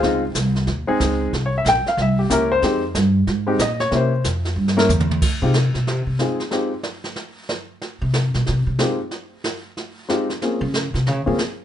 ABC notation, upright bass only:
X:1
M:4/4
L:1/8
Q:"Swing" 1/4=185
K:Cphr
V:1 name="Upright bass" clef=bass
D,,2 C,,2 E,, z D,,2 | C,,2 B,,, z C,,2 D,,2 | F,,2 G,,2 A,,2 B,,2 | C,2 F,,2 G,,2 =E,,2 |
z C,2 =B,, C, C, z2 | z8 | z C,2 =B,, C, C, z2 | z8 |
z D,2 C, D, D, z2 |]